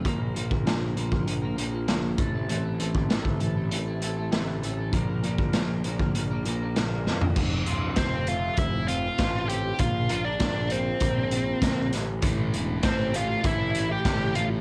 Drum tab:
CC |----------------|----------------|----------------|x---------------|
HH |x-x-x-x-x-x-x-x-|x-x-x-x-x-x-x-x-|x-x-x-x-x-x-x---|--x-x-x-x-x-x-x-|
SD |----o-------o---|----o-------o---|----o-------o-o-|----o-------o---|
FT |----------------|----------------|---------------o|----------------|
BD |o--o---o------o-|---o-o----------|o--o---o--------|o---o---o---o---|

CC |----------------|----------------|
HH |x-x-x-x-x-x-x-x-|x-x-x-x-x-x-x-x-|
SD |----o-------o-o-|----o-------o---|
FT |----------------|----------------|
BD |o---o---o---o---|o---o---o---o---|